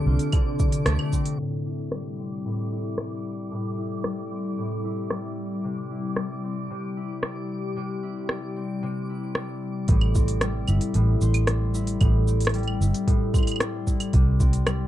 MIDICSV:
0, 0, Header, 1, 6, 480
1, 0, Start_track
1, 0, Key_signature, 0, "minor"
1, 0, Tempo, 530973
1, 1258, Time_signature, 4, 2, 24, 8
1, 13447, End_track
2, 0, Start_track
2, 0, Title_t, "Synth texture"
2, 0, Program_c, 0, 99
2, 0, Note_on_c, 0, 86, 78
2, 1250, Note_off_c, 0, 86, 0
2, 1261, Note_on_c, 0, 86, 75
2, 8949, Note_off_c, 0, 86, 0
2, 13447, End_track
3, 0, Start_track
3, 0, Title_t, "Analog synth pad"
3, 0, Program_c, 1, 89
3, 0, Note_on_c, 1, 48, 82
3, 0, Note_on_c, 1, 53, 80
3, 0, Note_on_c, 1, 62, 84
3, 0, Note_on_c, 1, 69, 71
3, 1262, Note_off_c, 1, 53, 0
3, 1557, Note_on_c, 1, 55, 74
3, 1787, Note_on_c, 1, 64, 82
3, 2041, Note_off_c, 1, 62, 0
3, 6135, Note_on_c, 1, 67, 78
3, 6533, Note_off_c, 1, 69, 0
3, 8939, Note_off_c, 1, 55, 0
3, 8940, Note_off_c, 1, 67, 0
3, 8941, Note_off_c, 1, 64, 0
3, 8942, Note_off_c, 1, 48, 0
3, 13447, End_track
4, 0, Start_track
4, 0, Title_t, "Harp"
4, 0, Program_c, 2, 46
4, 0, Note_on_c, 2, 50, 76
4, 0, Note_on_c, 2, 53, 84
4, 0, Note_on_c, 2, 57, 70
4, 0, Note_on_c, 2, 60, 65
4, 59, Note_on_c, 2, 65, 61
4, 289, Note_off_c, 2, 50, 0
4, 300, Note_on_c, 2, 50, 86
4, 774, Note_off_c, 2, 57, 0
4, 778, Note_on_c, 2, 57, 76
4, 1017, Note_off_c, 2, 60, 0
4, 1021, Note_on_c, 2, 60, 60
4, 1259, Note_on_c, 2, 45, 67
4, 1303, Note_off_c, 2, 50, 0
4, 1499, Note_on_c, 2, 64, 49
4, 1554, Note_off_c, 2, 65, 0
4, 1738, Note_on_c, 2, 55, 57
4, 1974, Note_off_c, 2, 60, 0
4, 1978, Note_on_c, 2, 60, 49
4, 2205, Note_off_c, 2, 45, 0
4, 2216, Note_on_c, 2, 45, 71
4, 2337, Note_off_c, 2, 53, 0
4, 2453, Note_off_c, 2, 64, 0
4, 2457, Note_on_c, 2, 64, 53
4, 2693, Note_off_c, 2, 55, 0
4, 2697, Note_on_c, 2, 55, 58
4, 3166, Note_off_c, 2, 45, 0
4, 3177, Note_on_c, 2, 45, 69
4, 3414, Note_off_c, 2, 64, 0
4, 3417, Note_on_c, 2, 64, 52
4, 3654, Note_off_c, 2, 55, 0
4, 3658, Note_on_c, 2, 55, 56
4, 3896, Note_off_c, 2, 60, 0
4, 3900, Note_on_c, 2, 60, 54
4, 4129, Note_off_c, 2, 45, 0
4, 4140, Note_on_c, 2, 45, 67
4, 4377, Note_off_c, 2, 64, 0
4, 4381, Note_on_c, 2, 64, 55
4, 4615, Note_off_c, 2, 55, 0
4, 4619, Note_on_c, 2, 55, 63
4, 5099, Note_on_c, 2, 48, 70
4, 5144, Note_off_c, 2, 45, 0
4, 5335, Note_off_c, 2, 64, 0
4, 5339, Note_on_c, 2, 64, 51
4, 5575, Note_off_c, 2, 55, 0
4, 5579, Note_on_c, 2, 55, 59
4, 5814, Note_off_c, 2, 60, 0
4, 5818, Note_on_c, 2, 60, 53
4, 5893, Note_off_c, 2, 57, 0
4, 6049, Note_off_c, 2, 48, 0
4, 6060, Note_on_c, 2, 48, 71
4, 6297, Note_off_c, 2, 64, 0
4, 6300, Note_on_c, 2, 64, 57
4, 6538, Note_off_c, 2, 55, 0
4, 6542, Note_on_c, 2, 55, 64
4, 7008, Note_off_c, 2, 48, 0
4, 7019, Note_on_c, 2, 48, 70
4, 7256, Note_off_c, 2, 64, 0
4, 7259, Note_on_c, 2, 64, 52
4, 7497, Note_off_c, 2, 55, 0
4, 7500, Note_on_c, 2, 55, 61
4, 7736, Note_off_c, 2, 60, 0
4, 7740, Note_on_c, 2, 60, 51
4, 7968, Note_off_c, 2, 48, 0
4, 7979, Note_on_c, 2, 48, 81
4, 8217, Note_off_c, 2, 64, 0
4, 8221, Note_on_c, 2, 64, 54
4, 8455, Note_off_c, 2, 55, 0
4, 8458, Note_on_c, 2, 55, 62
4, 8936, Note_on_c, 2, 45, 76
4, 8984, Note_off_c, 2, 48, 0
4, 9175, Note_off_c, 2, 60, 0
4, 9179, Note_on_c, 2, 60, 60
4, 9415, Note_off_c, 2, 55, 0
4, 9418, Note_on_c, 2, 55, 70
4, 9657, Note_off_c, 2, 64, 0
4, 9661, Note_on_c, 2, 64, 60
4, 9886, Note_off_c, 2, 45, 0
4, 9897, Note_on_c, 2, 45, 83
4, 10140, Note_on_c, 2, 72, 70
4, 10377, Note_off_c, 2, 55, 0
4, 10381, Note_on_c, 2, 55, 72
4, 10615, Note_off_c, 2, 64, 0
4, 10618, Note_on_c, 2, 64, 59
4, 10848, Note_off_c, 2, 45, 0
4, 10858, Note_on_c, 2, 45, 79
4, 11095, Note_off_c, 2, 60, 0
4, 11099, Note_on_c, 2, 60, 60
4, 11335, Note_off_c, 2, 55, 0
4, 11339, Note_on_c, 2, 55, 69
4, 11578, Note_off_c, 2, 64, 0
4, 11581, Note_on_c, 2, 64, 61
4, 11807, Note_off_c, 2, 45, 0
4, 11818, Note_on_c, 2, 45, 87
4, 12056, Note_off_c, 2, 72, 0
4, 12060, Note_on_c, 2, 72, 67
4, 12298, Note_off_c, 2, 55, 0
4, 12302, Note_on_c, 2, 55, 70
4, 12535, Note_off_c, 2, 64, 0
4, 12538, Note_on_c, 2, 64, 60
4, 12779, Note_on_c, 2, 48, 85
4, 12824, Note_off_c, 2, 45, 0
4, 13014, Note_off_c, 2, 60, 0
4, 13018, Note_on_c, 2, 60, 62
4, 13255, Note_off_c, 2, 55, 0
4, 13259, Note_on_c, 2, 55, 71
4, 13447, Note_off_c, 2, 48, 0
4, 13447, Note_off_c, 2, 55, 0
4, 13447, Note_off_c, 2, 60, 0
4, 13447, Note_off_c, 2, 64, 0
4, 13447, Note_off_c, 2, 72, 0
4, 13447, End_track
5, 0, Start_track
5, 0, Title_t, "Fingered electric bass"
5, 0, Program_c, 3, 33
5, 55, Note_on_c, 3, 36, 93
5, 146, Note_off_c, 3, 36, 0
5, 778, Note_on_c, 3, 38, 80
5, 867, Note_off_c, 3, 38, 0
5, 8939, Note_on_c, 3, 33, 99
5, 9609, Note_off_c, 3, 33, 0
5, 9657, Note_on_c, 3, 31, 87
5, 9746, Note_off_c, 3, 31, 0
5, 9897, Note_on_c, 3, 33, 90
5, 10076, Note_off_c, 3, 33, 0
5, 10138, Note_on_c, 3, 33, 98
5, 10809, Note_off_c, 3, 33, 0
5, 10858, Note_on_c, 3, 33, 89
5, 11528, Note_off_c, 3, 33, 0
5, 11576, Note_on_c, 3, 31, 99
5, 11666, Note_off_c, 3, 31, 0
5, 12781, Note_on_c, 3, 36, 98
5, 13447, Note_off_c, 3, 36, 0
5, 13447, End_track
6, 0, Start_track
6, 0, Title_t, "Drums"
6, 174, Note_on_c, 9, 46, 51
6, 179, Note_on_c, 9, 82, 42
6, 265, Note_off_c, 9, 46, 0
6, 269, Note_off_c, 9, 82, 0
6, 293, Note_on_c, 9, 46, 45
6, 293, Note_on_c, 9, 75, 78
6, 298, Note_on_c, 9, 82, 31
6, 300, Note_on_c, 9, 36, 102
6, 384, Note_off_c, 9, 46, 0
6, 384, Note_off_c, 9, 75, 0
6, 388, Note_off_c, 9, 82, 0
6, 390, Note_off_c, 9, 36, 0
6, 537, Note_on_c, 9, 82, 70
6, 540, Note_on_c, 9, 36, 98
6, 628, Note_off_c, 9, 82, 0
6, 630, Note_off_c, 9, 36, 0
6, 654, Note_on_c, 9, 46, 59
6, 659, Note_on_c, 9, 82, 42
6, 745, Note_off_c, 9, 46, 0
6, 749, Note_off_c, 9, 82, 0
6, 776, Note_on_c, 9, 37, 106
6, 776, Note_on_c, 9, 46, 48
6, 780, Note_on_c, 9, 82, 33
6, 866, Note_off_c, 9, 37, 0
6, 866, Note_off_c, 9, 46, 0
6, 871, Note_off_c, 9, 82, 0
6, 895, Note_on_c, 9, 75, 75
6, 985, Note_off_c, 9, 75, 0
6, 1018, Note_on_c, 9, 82, 71
6, 1020, Note_on_c, 9, 36, 56
6, 1109, Note_off_c, 9, 82, 0
6, 1110, Note_off_c, 9, 36, 0
6, 1135, Note_on_c, 9, 46, 58
6, 1225, Note_off_c, 9, 46, 0
6, 1261, Note_on_c, 9, 82, 33
6, 1351, Note_off_c, 9, 82, 0
6, 1733, Note_on_c, 9, 37, 85
6, 1823, Note_off_c, 9, 37, 0
6, 2692, Note_on_c, 9, 37, 92
6, 2783, Note_off_c, 9, 37, 0
6, 3654, Note_on_c, 9, 37, 89
6, 3744, Note_off_c, 9, 37, 0
6, 4614, Note_on_c, 9, 37, 91
6, 4705, Note_off_c, 9, 37, 0
6, 5573, Note_on_c, 9, 37, 91
6, 5663, Note_off_c, 9, 37, 0
6, 6534, Note_on_c, 9, 37, 91
6, 6625, Note_off_c, 9, 37, 0
6, 7494, Note_on_c, 9, 37, 85
6, 7585, Note_off_c, 9, 37, 0
6, 8453, Note_on_c, 9, 37, 87
6, 8544, Note_off_c, 9, 37, 0
6, 8931, Note_on_c, 9, 46, 46
6, 8936, Note_on_c, 9, 82, 33
6, 8939, Note_on_c, 9, 36, 117
6, 9022, Note_off_c, 9, 46, 0
6, 9026, Note_off_c, 9, 82, 0
6, 9030, Note_off_c, 9, 36, 0
6, 9052, Note_on_c, 9, 75, 75
6, 9142, Note_off_c, 9, 75, 0
6, 9175, Note_on_c, 9, 82, 79
6, 9179, Note_on_c, 9, 36, 94
6, 9266, Note_off_c, 9, 82, 0
6, 9270, Note_off_c, 9, 36, 0
6, 9293, Note_on_c, 9, 46, 51
6, 9298, Note_on_c, 9, 82, 42
6, 9384, Note_off_c, 9, 46, 0
6, 9388, Note_off_c, 9, 82, 0
6, 9412, Note_on_c, 9, 37, 99
6, 9412, Note_on_c, 9, 46, 46
6, 9416, Note_on_c, 9, 82, 32
6, 9502, Note_off_c, 9, 37, 0
6, 9502, Note_off_c, 9, 46, 0
6, 9506, Note_off_c, 9, 82, 0
6, 9650, Note_on_c, 9, 75, 69
6, 9654, Note_on_c, 9, 82, 74
6, 9740, Note_off_c, 9, 75, 0
6, 9745, Note_off_c, 9, 82, 0
6, 9771, Note_on_c, 9, 46, 53
6, 9776, Note_on_c, 9, 82, 41
6, 9862, Note_off_c, 9, 46, 0
6, 9866, Note_off_c, 9, 82, 0
6, 9891, Note_on_c, 9, 46, 45
6, 9895, Note_on_c, 9, 82, 33
6, 9981, Note_off_c, 9, 46, 0
6, 9986, Note_off_c, 9, 82, 0
6, 10136, Note_on_c, 9, 82, 75
6, 10227, Note_off_c, 9, 82, 0
6, 10252, Note_on_c, 9, 46, 56
6, 10252, Note_on_c, 9, 75, 77
6, 10257, Note_on_c, 9, 82, 43
6, 10343, Note_off_c, 9, 46, 0
6, 10343, Note_off_c, 9, 75, 0
6, 10347, Note_off_c, 9, 82, 0
6, 10372, Note_on_c, 9, 37, 104
6, 10372, Note_on_c, 9, 46, 46
6, 10376, Note_on_c, 9, 82, 35
6, 10462, Note_off_c, 9, 37, 0
6, 10462, Note_off_c, 9, 46, 0
6, 10466, Note_off_c, 9, 82, 0
6, 10617, Note_on_c, 9, 82, 77
6, 10708, Note_off_c, 9, 82, 0
6, 10732, Note_on_c, 9, 46, 55
6, 10737, Note_on_c, 9, 82, 41
6, 10823, Note_off_c, 9, 46, 0
6, 10827, Note_off_c, 9, 82, 0
6, 10854, Note_on_c, 9, 46, 42
6, 10854, Note_on_c, 9, 75, 71
6, 10858, Note_on_c, 9, 82, 36
6, 10859, Note_on_c, 9, 36, 127
6, 10944, Note_off_c, 9, 46, 0
6, 10944, Note_off_c, 9, 75, 0
6, 10948, Note_off_c, 9, 82, 0
6, 10950, Note_off_c, 9, 36, 0
6, 11099, Note_on_c, 9, 82, 78
6, 11189, Note_off_c, 9, 82, 0
6, 11214, Note_on_c, 9, 46, 50
6, 11219, Note_on_c, 9, 82, 45
6, 11254, Note_off_c, 9, 46, 0
6, 11254, Note_on_c, 9, 46, 42
6, 11273, Note_on_c, 9, 37, 109
6, 11294, Note_off_c, 9, 46, 0
6, 11294, Note_on_c, 9, 46, 32
6, 11309, Note_off_c, 9, 82, 0
6, 11335, Note_off_c, 9, 46, 0
6, 11335, Note_on_c, 9, 46, 42
6, 11339, Note_on_c, 9, 82, 33
6, 11363, Note_off_c, 9, 37, 0
6, 11377, Note_off_c, 9, 46, 0
6, 11377, Note_on_c, 9, 46, 23
6, 11419, Note_off_c, 9, 46, 0
6, 11419, Note_on_c, 9, 46, 19
6, 11430, Note_off_c, 9, 82, 0
6, 11459, Note_on_c, 9, 75, 77
6, 11509, Note_off_c, 9, 46, 0
6, 11549, Note_off_c, 9, 75, 0
6, 11586, Note_on_c, 9, 82, 76
6, 11677, Note_off_c, 9, 82, 0
6, 11702, Note_on_c, 9, 46, 53
6, 11706, Note_on_c, 9, 82, 43
6, 11792, Note_off_c, 9, 46, 0
6, 11797, Note_off_c, 9, 82, 0
6, 11820, Note_on_c, 9, 36, 104
6, 11822, Note_on_c, 9, 46, 44
6, 11826, Note_on_c, 9, 82, 35
6, 11911, Note_off_c, 9, 36, 0
6, 11912, Note_off_c, 9, 46, 0
6, 11917, Note_off_c, 9, 82, 0
6, 12060, Note_on_c, 9, 36, 100
6, 12060, Note_on_c, 9, 75, 33
6, 12064, Note_on_c, 9, 82, 78
6, 12100, Note_off_c, 9, 75, 0
6, 12100, Note_on_c, 9, 75, 40
6, 12139, Note_off_c, 9, 75, 0
6, 12139, Note_on_c, 9, 75, 44
6, 12151, Note_off_c, 9, 36, 0
6, 12155, Note_off_c, 9, 82, 0
6, 12179, Note_off_c, 9, 75, 0
6, 12179, Note_on_c, 9, 46, 53
6, 12179, Note_on_c, 9, 75, 50
6, 12184, Note_on_c, 9, 82, 46
6, 12218, Note_off_c, 9, 75, 0
6, 12218, Note_on_c, 9, 75, 59
6, 12257, Note_off_c, 9, 75, 0
6, 12257, Note_on_c, 9, 75, 65
6, 12270, Note_off_c, 9, 46, 0
6, 12274, Note_off_c, 9, 82, 0
6, 12298, Note_on_c, 9, 37, 111
6, 12298, Note_on_c, 9, 46, 44
6, 12303, Note_on_c, 9, 82, 37
6, 12347, Note_off_c, 9, 75, 0
6, 12389, Note_off_c, 9, 37, 0
6, 12389, Note_off_c, 9, 46, 0
6, 12393, Note_off_c, 9, 82, 0
6, 12541, Note_on_c, 9, 36, 62
6, 12541, Note_on_c, 9, 82, 80
6, 12631, Note_off_c, 9, 36, 0
6, 12631, Note_off_c, 9, 82, 0
6, 12658, Note_on_c, 9, 46, 53
6, 12658, Note_on_c, 9, 75, 69
6, 12662, Note_on_c, 9, 82, 40
6, 12748, Note_off_c, 9, 46, 0
6, 12748, Note_off_c, 9, 75, 0
6, 12752, Note_off_c, 9, 82, 0
6, 12776, Note_on_c, 9, 46, 44
6, 12781, Note_on_c, 9, 36, 116
6, 12781, Note_on_c, 9, 82, 34
6, 12867, Note_off_c, 9, 46, 0
6, 12871, Note_off_c, 9, 36, 0
6, 12871, Note_off_c, 9, 82, 0
6, 13020, Note_on_c, 9, 82, 80
6, 13021, Note_on_c, 9, 36, 92
6, 13111, Note_off_c, 9, 36, 0
6, 13111, Note_off_c, 9, 82, 0
6, 13136, Note_on_c, 9, 46, 54
6, 13141, Note_on_c, 9, 82, 48
6, 13227, Note_off_c, 9, 46, 0
6, 13231, Note_off_c, 9, 82, 0
6, 13258, Note_on_c, 9, 37, 105
6, 13258, Note_on_c, 9, 46, 42
6, 13258, Note_on_c, 9, 75, 70
6, 13263, Note_on_c, 9, 82, 36
6, 13348, Note_off_c, 9, 37, 0
6, 13348, Note_off_c, 9, 46, 0
6, 13348, Note_off_c, 9, 75, 0
6, 13353, Note_off_c, 9, 82, 0
6, 13447, End_track
0, 0, End_of_file